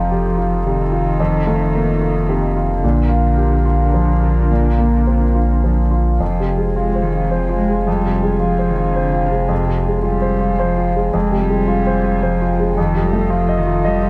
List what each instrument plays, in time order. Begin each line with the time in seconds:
Already playing: sub bass F1, upright piano F2 F4, cello F3, analog synth pad D#4 F4 A4
0.11 upright piano G4
0.38 upright piano F4
0.63 upright piano C3, cello D#3
0.92 upright piano F4
1.20 upright piano F2
1.47 upright piano A3
1.74 upright piano A#3
2.02 upright piano F4
2.29 upright piano C3
2.56 upright piano F4
2.84 sub bass A#1, upright piano A#2, cello D3, analog synth pad D4 F4 A#4
3.09 upright piano F4
3.37 upright piano G4
3.66 upright piano F4
3.94 upright piano F3
4.23 upright piano F4
4.51 upright piano A#2
4.78 upright piano A#3
5.07 upright piano C4
5.35 upright piano F4
5.64 upright piano F3
5.91 upright piano F4
6.20 sub bass F1, upright piano F2, cello F3, analog synth pad C4 F4 G#5
6.40 upright piano C3
6.58 upright piano G#3
6.74 cello G#3, upright piano F4
6.95 upright piano C5
7.02 cello D#3
7.14 upright piano F4
7.30 cello F3, upright piano C5
7.49 upright piano F4
7.58 cello G#3
7.69 upright piano G#3
7.85 upright piano F2, cello G3
8.05 upright piano C3
8.23 upright piano G#3
8.40 cello F3, upright piano F4
8.59 upright piano C5
8.70 cello D#3
8.77 upright piano F4
8.96 cello D3, upright piano C5
9.13 upright piano F4
9.26 cello C3
9.32 upright piano G#3
9.48 upright piano F2
9.67 upright piano C3
9.87 upright piano G#3
10.03 cello G3, upright piano F4
10.22 upright piano C5
10.41 upright piano F4
10.59 cello F3, upright piano C5
10.78 upright piano F4
10.96 upright piano G#3
11.13 sub bass F1, upright piano F2, cello G#3, analog synth pad C4 F4 G#5
11.32 upright piano C3
11.41 cello G3
11.50 upright piano G#3
11.68 upright piano F4
11.87 upright piano C5
12.04 upright piano F4
12.22 cello F3, upright piano C5
12.42 upright piano F4
12.60 upright piano G#3
12.76 upright piano F2, cello D#3, analog synth pad A4 D#5
12.95 upright piano C3
13.02 cello G3
13.13 upright piano A3
13.30 cello F3, upright piano F4
13.49 upright piano D#5
13.58 cello D#3
13.67 upright piano F4
13.85 cello G3, upright piano D#5
14.03 upright piano F4